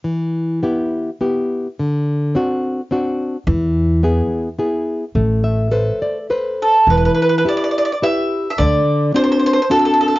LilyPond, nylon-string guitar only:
\new Staff \with { instrumentName = "Nylon-string guitar" } { \time 3/4 \key e \minor \tempo 4 = 106 << { r2. | r2. | r2. | r8 e''4 d''8 b'4 |
r2. | r2. | } \\ { e4 <b e' g'>4 <b e' g'>4 | d4 <c' d' fis'>4 <c' d' fis'>4 | e4 <b e' gis'>4 <b e' gis'>4 | a4 <a' b' c''>4 <a' b' c''>4 |
e4 <e' g' b'>4 <e' g' b'>4 | d4 <c' d' fis'>4 <c' d' fis'>4 | } >> }